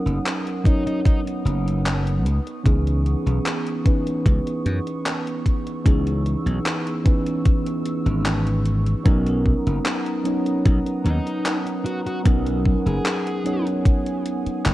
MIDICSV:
0, 0, Header, 1, 7, 480
1, 0, Start_track
1, 0, Key_signature, 5, "major"
1, 0, Tempo, 800000
1, 1594, Time_signature, 4, 2, 24, 8
1, 8843, End_track
2, 0, Start_track
2, 0, Title_t, "Ambient pad"
2, 0, Program_c, 0, 92
2, 0, Note_on_c, 0, 59, 74
2, 0, Note_on_c, 0, 78, 72
2, 0, Note_on_c, 0, 87, 85
2, 1330, Note_off_c, 0, 78, 0
2, 1353, Note_on_c, 0, 85, 66
2, 3250, Note_off_c, 0, 87, 0
2, 3274, Note_on_c, 0, 88, 82
2, 5410, Note_off_c, 0, 59, 0
2, 5410, Note_off_c, 0, 85, 0
2, 5413, Note_off_c, 0, 88, 0
2, 5435, Note_on_c, 0, 78, 70
2, 5435, Note_on_c, 0, 82, 70
2, 5436, Note_on_c, 0, 59, 80
2, 5436, Note_on_c, 0, 87, 85
2, 7335, Note_off_c, 0, 82, 0
2, 7359, Note_on_c, 0, 80, 69
2, 8843, Note_off_c, 0, 59, 0
2, 8843, Note_off_c, 0, 78, 0
2, 8843, Note_off_c, 0, 80, 0
2, 8843, Note_off_c, 0, 87, 0
2, 8843, End_track
3, 0, Start_track
3, 0, Title_t, "Lead electric guitar"
3, 0, Program_c, 1, 29
3, 392, Note_on_c, 1, 63, 89
3, 493, Note_off_c, 1, 63, 0
3, 518, Note_on_c, 1, 63, 87
3, 592, Note_off_c, 1, 63, 0
3, 631, Note_on_c, 1, 63, 76
3, 712, Note_off_c, 1, 63, 0
3, 6633, Note_on_c, 1, 63, 86
3, 6923, Note_off_c, 1, 63, 0
3, 7112, Note_on_c, 1, 66, 87
3, 7193, Note_off_c, 1, 66, 0
3, 7238, Note_on_c, 1, 66, 80
3, 7312, Note_off_c, 1, 66, 0
3, 7719, Note_on_c, 1, 68, 95
3, 8199, Note_off_c, 1, 68, 0
3, 8843, End_track
4, 0, Start_track
4, 0, Title_t, "Tine electric piano"
4, 0, Program_c, 2, 4
4, 0, Control_c, 2, 64, 127
4, 0, Note_on_c, 2, 54, 93
4, 0, Note_on_c, 2, 59, 84
4, 0, Note_on_c, 2, 61, 88
4, 0, Note_on_c, 2, 63, 82
4, 0, Note_on_c, 2, 70, 100
4, 360, Note_off_c, 2, 54, 0
4, 363, Note_off_c, 2, 59, 0
4, 365, Note_off_c, 2, 61, 0
4, 367, Note_off_c, 2, 63, 0
4, 369, Note_off_c, 2, 70, 0
4, 384, Note_on_c, 2, 54, 85
4, 388, Note_on_c, 2, 59, 75
4, 392, Note_on_c, 2, 61, 71
4, 396, Note_on_c, 2, 63, 76
4, 402, Note_on_c, 2, 73, 89
4, 1335, Note_off_c, 2, 54, 0
4, 1337, Note_off_c, 2, 59, 0
4, 1339, Note_off_c, 2, 61, 0
4, 1341, Note_off_c, 2, 63, 0
4, 1344, Note_off_c, 2, 73, 0
4, 1363, Control_c, 2, 64, 0
4, 1471, Control_c, 2, 64, 127
4, 1580, Note_on_c, 2, 52, 86
4, 1584, Note_on_c, 2, 59, 87
4, 1589, Note_on_c, 2, 61, 82
4, 1593, Note_on_c, 2, 63, 82
4, 1598, Note_on_c, 2, 68, 99
4, 2279, Note_off_c, 2, 52, 0
4, 2281, Note_off_c, 2, 59, 0
4, 2284, Note_off_c, 2, 61, 0
4, 2286, Note_off_c, 2, 63, 0
4, 2288, Note_off_c, 2, 68, 0
4, 2304, Note_on_c, 2, 52, 81
4, 2308, Note_on_c, 2, 59, 73
4, 2313, Note_on_c, 2, 61, 73
4, 2319, Note_on_c, 2, 63, 73
4, 2322, Note_on_c, 2, 71, 92
4, 3481, Note_off_c, 2, 52, 0
4, 3484, Note_off_c, 2, 59, 0
4, 3486, Note_off_c, 2, 61, 0
4, 3489, Note_off_c, 2, 63, 0
4, 3490, Note_off_c, 2, 71, 0
4, 3504, Note_on_c, 2, 52, 91
4, 3507, Note_on_c, 2, 59, 85
4, 3513, Note_on_c, 2, 61, 79
4, 3517, Note_on_c, 2, 63, 82
4, 3522, Note_on_c, 2, 68, 101
4, 4202, Note_off_c, 2, 52, 0
4, 4203, Note_off_c, 2, 59, 0
4, 4206, Note_off_c, 2, 61, 0
4, 4208, Note_off_c, 2, 63, 0
4, 4210, Note_off_c, 2, 68, 0
4, 4221, Note_on_c, 2, 52, 85
4, 4225, Note_on_c, 2, 59, 77
4, 4229, Note_on_c, 2, 61, 73
4, 4235, Note_on_c, 2, 63, 75
4, 4239, Note_on_c, 2, 71, 90
4, 5400, Note_off_c, 2, 52, 0
4, 5402, Note_off_c, 2, 59, 0
4, 5404, Note_off_c, 2, 61, 0
4, 5407, Note_off_c, 2, 63, 0
4, 5409, Note_off_c, 2, 71, 0
4, 5422, Note_on_c, 2, 54, 89
4, 5428, Note_on_c, 2, 59, 86
4, 5431, Note_on_c, 2, 61, 89
4, 5436, Note_on_c, 2, 63, 83
4, 5440, Note_on_c, 2, 70, 98
4, 5442, Control_c, 2, 64, 0
4, 5547, Control_c, 2, 64, 127
4, 6120, Note_off_c, 2, 54, 0
4, 6123, Note_off_c, 2, 59, 0
4, 6125, Note_off_c, 2, 61, 0
4, 6127, Note_off_c, 2, 63, 0
4, 6130, Note_off_c, 2, 70, 0
4, 6141, Note_on_c, 2, 54, 81
4, 6146, Note_on_c, 2, 59, 75
4, 6149, Note_on_c, 2, 61, 73
4, 6156, Note_on_c, 2, 63, 75
4, 6160, Note_on_c, 2, 73, 87
4, 7320, Note_off_c, 2, 54, 0
4, 7322, Note_off_c, 2, 59, 0
4, 7324, Note_off_c, 2, 61, 0
4, 7327, Note_off_c, 2, 63, 0
4, 7330, Note_off_c, 2, 73, 0
4, 7342, Note_on_c, 2, 54, 93
4, 7348, Note_on_c, 2, 59, 88
4, 7350, Note_on_c, 2, 61, 85
4, 7355, Note_on_c, 2, 63, 84
4, 7360, Note_on_c, 2, 70, 106
4, 8041, Note_off_c, 2, 54, 0
4, 8043, Note_off_c, 2, 59, 0
4, 8044, Note_off_c, 2, 61, 0
4, 8047, Note_off_c, 2, 63, 0
4, 8049, Note_off_c, 2, 70, 0
4, 8061, Note_on_c, 2, 54, 80
4, 8065, Note_on_c, 2, 59, 78
4, 8072, Note_on_c, 2, 61, 74
4, 8074, Note_on_c, 2, 63, 75
4, 8079, Note_on_c, 2, 73, 93
4, 8843, Note_off_c, 2, 54, 0
4, 8843, Note_off_c, 2, 59, 0
4, 8843, Note_off_c, 2, 61, 0
4, 8843, Note_off_c, 2, 63, 0
4, 8843, Note_off_c, 2, 73, 0
4, 8843, End_track
5, 0, Start_track
5, 0, Title_t, "Slap bass"
5, 0, Program_c, 3, 36
5, 35, Note_on_c, 3, 30, 101
5, 107, Note_off_c, 3, 30, 0
5, 871, Note_on_c, 3, 30, 88
5, 1350, Note_off_c, 3, 30, 0
5, 1350, Note_on_c, 3, 37, 89
5, 1429, Note_off_c, 3, 37, 0
5, 1594, Note_on_c, 3, 37, 93
5, 1882, Note_off_c, 3, 37, 0
5, 1958, Note_on_c, 3, 35, 95
5, 2029, Note_off_c, 3, 35, 0
5, 2555, Note_on_c, 3, 37, 85
5, 2631, Note_off_c, 3, 37, 0
5, 2794, Note_on_c, 3, 42, 85
5, 2870, Note_off_c, 3, 42, 0
5, 3513, Note_on_c, 3, 37, 97
5, 3801, Note_off_c, 3, 37, 0
5, 3876, Note_on_c, 3, 35, 98
5, 3948, Note_off_c, 3, 35, 0
5, 4835, Note_on_c, 3, 32, 90
5, 5361, Note_off_c, 3, 32, 0
5, 5433, Note_on_c, 3, 35, 93
5, 5721, Note_off_c, 3, 35, 0
5, 5799, Note_on_c, 3, 30, 102
5, 5869, Note_off_c, 3, 30, 0
5, 6393, Note_on_c, 3, 35, 82
5, 6470, Note_off_c, 3, 35, 0
5, 6632, Note_on_c, 3, 39, 87
5, 6710, Note_off_c, 3, 39, 0
5, 7352, Note_on_c, 3, 35, 96
5, 7641, Note_off_c, 3, 35, 0
5, 7716, Note_on_c, 3, 30, 97
5, 7788, Note_off_c, 3, 30, 0
5, 8794, Note_on_c, 3, 30, 92
5, 8843, Note_off_c, 3, 30, 0
5, 8843, End_track
6, 0, Start_track
6, 0, Title_t, "Muted slap bass strokes"
6, 8678, Note_on_c, 9, 29, 39
6, 8738, Note_off_c, 9, 29, 0
6, 8843, End_track
7, 0, Start_track
7, 0, Title_t, "Drums"
7, 43, Note_on_c, 9, 42, 37
7, 103, Note_off_c, 9, 42, 0
7, 157, Note_on_c, 9, 39, 108
7, 157, Note_on_c, 9, 42, 85
7, 217, Note_off_c, 9, 39, 0
7, 217, Note_off_c, 9, 42, 0
7, 281, Note_on_c, 9, 42, 35
7, 341, Note_off_c, 9, 42, 0
7, 392, Note_on_c, 9, 36, 101
7, 398, Note_on_c, 9, 42, 65
7, 452, Note_off_c, 9, 36, 0
7, 458, Note_off_c, 9, 42, 0
7, 522, Note_on_c, 9, 42, 39
7, 582, Note_off_c, 9, 42, 0
7, 632, Note_on_c, 9, 36, 108
7, 637, Note_on_c, 9, 42, 87
7, 692, Note_off_c, 9, 36, 0
7, 697, Note_off_c, 9, 42, 0
7, 764, Note_on_c, 9, 42, 37
7, 824, Note_off_c, 9, 42, 0
7, 879, Note_on_c, 9, 42, 60
7, 939, Note_off_c, 9, 42, 0
7, 1006, Note_on_c, 9, 42, 38
7, 1066, Note_off_c, 9, 42, 0
7, 1116, Note_on_c, 9, 39, 110
7, 1116, Note_on_c, 9, 42, 83
7, 1176, Note_off_c, 9, 39, 0
7, 1176, Note_off_c, 9, 42, 0
7, 1241, Note_on_c, 9, 42, 38
7, 1301, Note_off_c, 9, 42, 0
7, 1357, Note_on_c, 9, 42, 59
7, 1417, Note_off_c, 9, 42, 0
7, 1481, Note_on_c, 9, 42, 35
7, 1541, Note_off_c, 9, 42, 0
7, 1594, Note_on_c, 9, 36, 117
7, 1597, Note_on_c, 9, 42, 92
7, 1654, Note_off_c, 9, 36, 0
7, 1657, Note_off_c, 9, 42, 0
7, 1723, Note_on_c, 9, 42, 36
7, 1783, Note_off_c, 9, 42, 0
7, 1836, Note_on_c, 9, 42, 35
7, 1896, Note_off_c, 9, 42, 0
7, 1962, Note_on_c, 9, 42, 41
7, 2022, Note_off_c, 9, 42, 0
7, 2076, Note_on_c, 9, 39, 107
7, 2076, Note_on_c, 9, 42, 92
7, 2136, Note_off_c, 9, 39, 0
7, 2136, Note_off_c, 9, 42, 0
7, 2200, Note_on_c, 9, 42, 36
7, 2260, Note_off_c, 9, 42, 0
7, 2314, Note_on_c, 9, 36, 95
7, 2315, Note_on_c, 9, 42, 65
7, 2374, Note_off_c, 9, 36, 0
7, 2375, Note_off_c, 9, 42, 0
7, 2441, Note_on_c, 9, 42, 39
7, 2501, Note_off_c, 9, 42, 0
7, 2554, Note_on_c, 9, 36, 108
7, 2557, Note_on_c, 9, 42, 88
7, 2614, Note_off_c, 9, 36, 0
7, 2617, Note_off_c, 9, 42, 0
7, 2682, Note_on_c, 9, 42, 39
7, 2742, Note_off_c, 9, 42, 0
7, 2795, Note_on_c, 9, 42, 59
7, 2855, Note_off_c, 9, 42, 0
7, 2922, Note_on_c, 9, 42, 38
7, 2982, Note_off_c, 9, 42, 0
7, 3036, Note_on_c, 9, 39, 115
7, 3036, Note_on_c, 9, 42, 87
7, 3096, Note_off_c, 9, 39, 0
7, 3096, Note_off_c, 9, 42, 0
7, 3162, Note_on_c, 9, 42, 37
7, 3222, Note_off_c, 9, 42, 0
7, 3274, Note_on_c, 9, 36, 56
7, 3276, Note_on_c, 9, 42, 63
7, 3334, Note_off_c, 9, 36, 0
7, 3336, Note_off_c, 9, 42, 0
7, 3400, Note_on_c, 9, 42, 35
7, 3460, Note_off_c, 9, 42, 0
7, 3514, Note_on_c, 9, 36, 113
7, 3516, Note_on_c, 9, 42, 97
7, 3574, Note_off_c, 9, 36, 0
7, 3576, Note_off_c, 9, 42, 0
7, 3641, Note_on_c, 9, 42, 38
7, 3701, Note_off_c, 9, 42, 0
7, 3756, Note_on_c, 9, 42, 39
7, 3816, Note_off_c, 9, 42, 0
7, 3880, Note_on_c, 9, 42, 40
7, 3940, Note_off_c, 9, 42, 0
7, 3995, Note_on_c, 9, 39, 114
7, 3995, Note_on_c, 9, 42, 92
7, 4055, Note_off_c, 9, 39, 0
7, 4055, Note_off_c, 9, 42, 0
7, 4121, Note_on_c, 9, 42, 39
7, 4181, Note_off_c, 9, 42, 0
7, 4234, Note_on_c, 9, 36, 99
7, 4234, Note_on_c, 9, 42, 68
7, 4294, Note_off_c, 9, 36, 0
7, 4294, Note_off_c, 9, 42, 0
7, 4359, Note_on_c, 9, 42, 41
7, 4419, Note_off_c, 9, 42, 0
7, 4473, Note_on_c, 9, 42, 90
7, 4474, Note_on_c, 9, 36, 105
7, 4533, Note_off_c, 9, 42, 0
7, 4534, Note_off_c, 9, 36, 0
7, 4599, Note_on_c, 9, 42, 39
7, 4659, Note_off_c, 9, 42, 0
7, 4713, Note_on_c, 9, 42, 64
7, 4773, Note_off_c, 9, 42, 0
7, 4838, Note_on_c, 9, 42, 39
7, 4898, Note_off_c, 9, 42, 0
7, 4953, Note_on_c, 9, 39, 119
7, 4953, Note_on_c, 9, 42, 89
7, 5013, Note_off_c, 9, 39, 0
7, 5013, Note_off_c, 9, 42, 0
7, 5081, Note_on_c, 9, 42, 38
7, 5141, Note_off_c, 9, 42, 0
7, 5193, Note_on_c, 9, 42, 61
7, 5253, Note_off_c, 9, 42, 0
7, 5319, Note_on_c, 9, 42, 38
7, 5379, Note_off_c, 9, 42, 0
7, 5433, Note_on_c, 9, 42, 104
7, 5434, Note_on_c, 9, 36, 121
7, 5493, Note_off_c, 9, 42, 0
7, 5494, Note_off_c, 9, 36, 0
7, 5559, Note_on_c, 9, 42, 41
7, 5619, Note_off_c, 9, 42, 0
7, 5674, Note_on_c, 9, 36, 64
7, 5734, Note_off_c, 9, 36, 0
7, 5801, Note_on_c, 9, 42, 44
7, 5861, Note_off_c, 9, 42, 0
7, 5913, Note_on_c, 9, 39, 120
7, 5913, Note_on_c, 9, 42, 99
7, 5973, Note_off_c, 9, 39, 0
7, 5973, Note_off_c, 9, 42, 0
7, 6038, Note_on_c, 9, 42, 40
7, 6098, Note_off_c, 9, 42, 0
7, 6152, Note_on_c, 9, 42, 68
7, 6212, Note_off_c, 9, 42, 0
7, 6277, Note_on_c, 9, 42, 40
7, 6337, Note_off_c, 9, 42, 0
7, 6393, Note_on_c, 9, 36, 120
7, 6394, Note_on_c, 9, 42, 92
7, 6453, Note_off_c, 9, 36, 0
7, 6454, Note_off_c, 9, 42, 0
7, 6518, Note_on_c, 9, 42, 40
7, 6578, Note_off_c, 9, 42, 0
7, 6634, Note_on_c, 9, 42, 63
7, 6694, Note_off_c, 9, 42, 0
7, 6761, Note_on_c, 9, 42, 40
7, 6821, Note_off_c, 9, 42, 0
7, 6874, Note_on_c, 9, 39, 122
7, 6874, Note_on_c, 9, 42, 92
7, 6934, Note_off_c, 9, 39, 0
7, 6934, Note_off_c, 9, 42, 0
7, 7000, Note_on_c, 9, 42, 38
7, 7060, Note_off_c, 9, 42, 0
7, 7115, Note_on_c, 9, 42, 69
7, 7175, Note_off_c, 9, 42, 0
7, 7239, Note_on_c, 9, 42, 39
7, 7299, Note_off_c, 9, 42, 0
7, 7353, Note_on_c, 9, 36, 119
7, 7353, Note_on_c, 9, 42, 102
7, 7413, Note_off_c, 9, 36, 0
7, 7413, Note_off_c, 9, 42, 0
7, 7479, Note_on_c, 9, 42, 41
7, 7539, Note_off_c, 9, 42, 0
7, 7593, Note_on_c, 9, 36, 67
7, 7653, Note_off_c, 9, 36, 0
7, 7720, Note_on_c, 9, 42, 44
7, 7780, Note_off_c, 9, 42, 0
7, 7834, Note_on_c, 9, 39, 120
7, 7834, Note_on_c, 9, 42, 99
7, 7894, Note_off_c, 9, 39, 0
7, 7894, Note_off_c, 9, 42, 0
7, 7961, Note_on_c, 9, 42, 41
7, 8021, Note_off_c, 9, 42, 0
7, 8075, Note_on_c, 9, 42, 68
7, 8135, Note_off_c, 9, 42, 0
7, 8201, Note_on_c, 9, 42, 43
7, 8261, Note_off_c, 9, 42, 0
7, 8313, Note_on_c, 9, 36, 117
7, 8315, Note_on_c, 9, 42, 96
7, 8373, Note_off_c, 9, 36, 0
7, 8375, Note_off_c, 9, 42, 0
7, 8438, Note_on_c, 9, 42, 43
7, 8498, Note_off_c, 9, 42, 0
7, 8554, Note_on_c, 9, 42, 69
7, 8614, Note_off_c, 9, 42, 0
7, 8678, Note_on_c, 9, 42, 43
7, 8738, Note_off_c, 9, 42, 0
7, 8793, Note_on_c, 9, 39, 122
7, 8793, Note_on_c, 9, 42, 95
7, 8843, Note_off_c, 9, 39, 0
7, 8843, Note_off_c, 9, 42, 0
7, 8843, End_track
0, 0, End_of_file